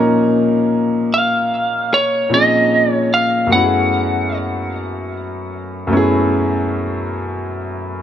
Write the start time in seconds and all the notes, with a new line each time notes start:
Already playing: A#2 F3 A#3 C#4 D#4 A#4
1.14 F5
1.94 C#5
2.29 A#2 F3 C4 C#4 D#4
2.34 G#4 D#5
2.93 C#5
3.14 F5
3.47 F#2 A3 B3
3.52 C#4 E4 F#5
3.57 F#4
3.63 G#4
5.87 F#2 A3 B3
5.93 C#4 E4 G#4